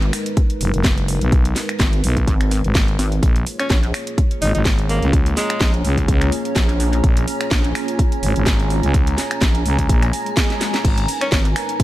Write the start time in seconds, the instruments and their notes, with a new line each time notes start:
Already playing: wobble bass G#1, analog synth pad G#3 D#4 A#4 B4
0.02 closed hi-hat
0.13 finger snap, open hi-hat
0.26 closed hi-hat
0.37 kick, closed hi-hat
0.50 closed hi-hat
0.61 fm bass F#1, open hi-hat
0.74 fm bass F#1, closed hi-hat
0.84 kick, snare, closed hi-hat
0.98 closed hi-hat
1.08 open hi-hat
1.21 fm bass B1, closed hi-hat
1.32 kick, closed hi-hat
1.45 closed hi-hat
1.56 snare, open hi-hat
1.69 finger snap, closed hi-hat
1.80 wobble bass G#1, kick, snare, closed hi-hat
1.93 closed hi-hat
2.04 fm bass B1, open hi-hat
2.17 kick, closed hi-hat
2.27 wobble bass G#1, kick, closed hi-hat
2.41 finger snap, closed hi-hat
2.51 open hi-hat
2.64 fm bass G#1, closed hi-hat
2.75 kick, snare, closed hi-hat
2.88 closed hi-hat
2.99 wobble bass G#1, open hi-hat
3.12 closed hi-hat
3.23 fm bass A#1, analog synth pad A#3 F4 G#4 C#5, ambient pad C#4, kick, closed hi-hat
3.28 ambient pad A#5
3.36 closed hi-hat
3.47 open hi-hat
3.56 alto saxophone C#4, ambient pad G#5, finger snap, closed hi-hat
3.70 wobble bass A#1, alto saxophone C#4, kick, snare, closed hi-hat
3.83 closed hi-hat
3.94 finger snap, open hi-hat
4.07 closed hi-hat
4.18 kick, closed hi-hat
4.31 closed hi-hat
4.42 fm bass G#1, alto saxophone D#4, open hi-hat
4.55 fm bass G#1, alto saxophone D#4, closed hi-hat
4.65 kick, snare, closed hi-hat
4.79 closed hi-hat
4.89 alto saxophone A#3, open hi-hat
5.02 fm bass C#2, closed hi-hat
5.13 kick, closed hi-hat
5.26 closed hi-hat
5.37 alto saxophone G#3, snare, open hi-hat
5.50 finger snap, closed hi-hat
5.61 wobble bass A#1, kick, snare, closed hi-hat
5.74 closed hi-hat
5.85 fm bass C#2, open hi-hat
5.98 kick, closed hi-hat
6.08 fm bass C#2, kick, closed hi-hat
6.21 finger snap, closed hi-hat
6.32 open hi-hat
6.45 closed hi-hat
6.56 wobble bass A#1, kick, snare, closed hi-hat
6.69 closed hi-hat
6.80 open hi-hat
6.93 closed hi-hat
7.04 fm bass A#1, kick, closed hi-hat
7.17 closed hi-hat
7.28 open hi-hat
7.41 finger snap, closed hi-hat
7.51 wobble bass A#1, kick, snare, closed hi-hat
7.64 closed hi-hat
7.75 finger snap, open hi-hat
7.88 closed hi-hat
7.99 kick, closed hi-hat
8.12 closed hi-hat
8.23 fm bass G#1, open hi-hat
8.36 fm bass G#1, closed hi-hat
8.46 kick, snare, closed hi-hat
8.60 closed hi-hat
8.70 open hi-hat
8.83 fm bass C#2, closed hi-hat
8.94 kick, closed hi-hat
9.07 closed hi-hat
9.18 snare, open hi-hat
9.31 finger snap, closed hi-hat
9.41 wobble bass A#1, kick, snare, closed hi-hat
9.55 closed hi-hat
9.66 fm bass C#2, open hi-hat
9.79 kick, closed hi-hat
9.89 fm bass A#1, kick, closed hi-hat, swell
10.02 finger snap, closed hi-hat
10.13 open hi-hat
10.26 closed hi-hat
10.37 kick, snare, closed hi-hat
10.50 snare, closed hi-hat
10.61 snare, open hi-hat
10.74 snare, closed hi-hat
10.85 fm bass G#1, analog synth pad G#3 D#4 A#4 B4, ambient pad B3, kick, closed hi-hat, crash
10.98 closed hi-hat
11.08 open hi-hat
11.21 alto saxophone C#4, finger snap, closed hi-hat
11.32 wobble bass G#1, alto saxophone C#4, kick, snare, closed hi-hat
11.45 closed hi-hat
11.56 finger snap, open hi-hat
11.69 closed hi-hat
11.80 kick, closed hi-hat